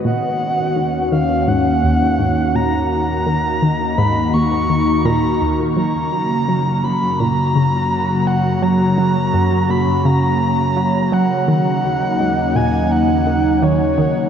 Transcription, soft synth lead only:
X:1
M:4/4
L:1/16
Q:1/4=84
K:Ebm
V:1 name="Soft synth lead"
g6 f2 g6 b2 | b6 c'2 d'4 b3 z | b6 c'2 b6 g2 | b6 c'2 b6 g2 |
g6 a2 g4 d4 |]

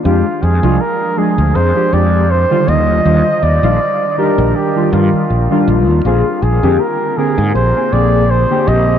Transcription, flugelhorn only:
X:1
M:4/4
L:1/8
Q:"Swing 16ths" 1/4=80
K:Fdor
V:1 name="Flugelhorn"
F A B A c d c e- | e d2 B G F2 z | F A B A c d c e |]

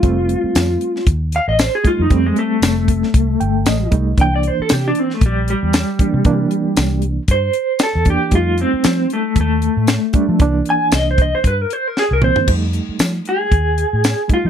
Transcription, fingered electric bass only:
X:1
M:4/4
L:1/16
Q:"Swing 16ths" 1/4=116
K:Fmix
V:1 name="Fingered electric bass" clef=bass
F,,,3 z F,,2 z2 E,,3 A,,,2 z2 F,, | F,,2 z2 F,,,4 C,,2 G,,,2 A,,,2 C,,2 | C,,3 z C,2 z2 B,,,3 =E,,2 z2 C, | C,2 z2 C,,4 G,,2 z3 =E,,2 z |
F,,3 z F,2 z2 E,,3 A,,2 z2 F, | C,,2 z2 C,,4 G,,2 z3 C,,2 z | F,,3 z F,2 z2 E,,3 A,,2 z2 F, |]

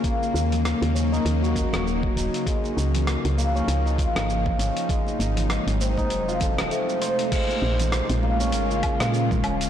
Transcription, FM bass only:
X:1
M:4/4
L:1/16
Q:"Swing 16ths" 1/4=99
K:Bbm
V:1 name="FM bass" clef=bass
z2 E,,3 E,,3 E,,3 E,,,3 E,,, z | z2 D,,3 D,,3 D,,3 A,,,3 A,,, z | z2 A,,,3 A,,,3 F,,,3 E,,, z4 | z2 B,,,3 B,,,3 A,,,3 B,,3 E,,,2 |]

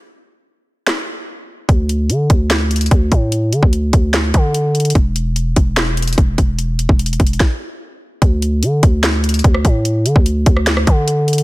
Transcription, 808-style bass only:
X:1
M:4/4
L:1/16
Q:1/4=147
K:Ddor
V:1 name="808-style bass" clef=bass
z16 | D,,4 D,2 D,,6 D,,2 A,,2- | A,,2 D, D,,3 D,,4 D,6 | E,,,6 E,,,6 E,,,2 E,,,2- |
E,,,3 E,,,3 E,,,2 z8 | D,,4 D,2 D,,6 D,,2 A,,2- | A,,2 D, D,,3 D,,4 D,6 |]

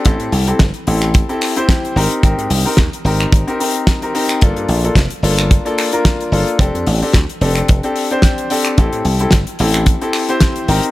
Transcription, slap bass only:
X:1
M:4/4
L:1/16
Q:"Swing 16ths" 1/4=110
K:Aphr
V:1 name="Slap bass" clef=bass
A,,, A,, C,, z G,,, z A,,,3 z4 z _A,,, z | _A,,, _A,, C,, z _E,, z A,,, z A,,, z6 z | G,,, G,, B,,, z F,,, z G,,,3 z4 z G,,, z | F,,, F,, A,,, z D,, z F,,, z F,,, z6 z |
A,,, A,, C,, z G,,, z A,,,3 z4 z _A,,, z |]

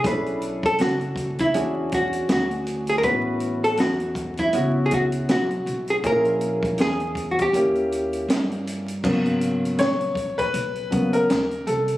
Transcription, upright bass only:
X:1
M:4/4
L:1/8
Q:"Swing 16ths" 1/4=80
K:G#m
V:1 name="Upright bass" clef=bass
B,,,2 F,,,2 E,,2 =D,,2 | =A,,,2 E,,2 C,,2 B,,, B,,, | A,,,2 E,,2 D,,2 =G,,2 | G,,,2 A,,,2 B,,,2 D,, ^B,,, |]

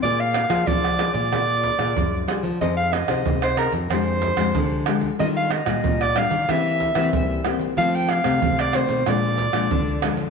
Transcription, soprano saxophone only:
X:1
M:4/4
L:1/16
Q:1/4=93
K:Fdor
V:1 name="Soprano saxophone"
d f3 d3 d6- d z2 | e f e3 c B2 c6 z2 | e f e3 d f2 =e6 z2 | f g f3 d c2 d6 z2 |]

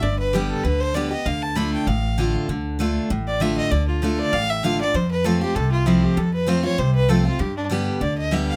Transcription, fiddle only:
X:1
M:4/4
L:1/8
Q:"Swing" 1/4=195
K:Ddor
V:1 name="Fiddle"
d B G A B c d _e | f a b g f3 z | z4 z d e _e | d F A d f e f d |
c B A G A F E G | A B c ^c =c B A F | G D z2 d _e =e f |]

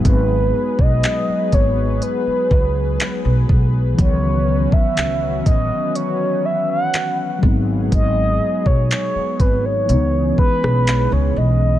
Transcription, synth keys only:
X:1
M:4/4
L:1/8
Q:1/4=61
K:C#m
V:1 name="Synth keys" clef=bass
[F,G,B,D]6- [F,G,B,D] z | [D,E,F,B,]6- [D,E,F,B,] [F,G,B,D]- | [F,G,B,D]4 [E,G,B,D]4 |]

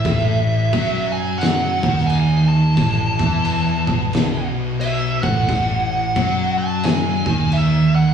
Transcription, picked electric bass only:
X:1
M:4/4
L:1/8
Q:"Swing" 1/4=88
K:Alyd
V:1 name="Picked electric bass" clef=bass
A,,,2 F,,3 D,,3 | A,,, E,,2 B,,,4 A,,, | A,,,2 F,,3 D,,3 |]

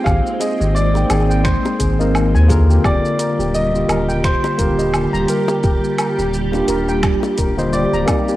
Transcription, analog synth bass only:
X:1
M:4/4
L:1/16
Q:"Swing 16ths" 1/4=86
K:Eblyd
V:1 name="Analog synth bass" clef=bass
_A,,, z2 A,,,3 A,,,3 z A,,,3 E,,3 | E,,, z2 E,,,3 E,,,3 z E,,,3 E,,, z2 | E,,, z2 E,,,3 E,,,3 z E,,,3 E,,, z2 |]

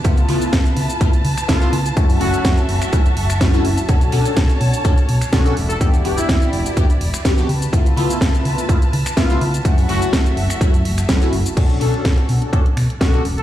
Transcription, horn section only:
X:1
M:4/4
L:1/16
Q:"Swing 16ths" 1/4=125
K:Bm
V:1 name="Horn section"
z12 ^E2 z2 | z2 F3 z8 z3 | z12 F2 z A | A z2 E4 z8 z |
z12 ^E2 z2 | z2 F3 z8 z3 | z12 F2 z A |]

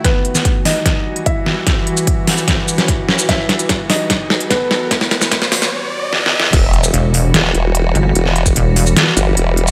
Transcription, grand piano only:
X:1
M:4/4
L:1/8
Q:1/4=148
K:Em
V:1 name="Grand piano"
[B,B]3 [^D^d]3 [Ee]2- | [Ee]8 | [Ee]3 [^D^d]3 [B,B]2- | [B,B]8 |
z8 | z8 |]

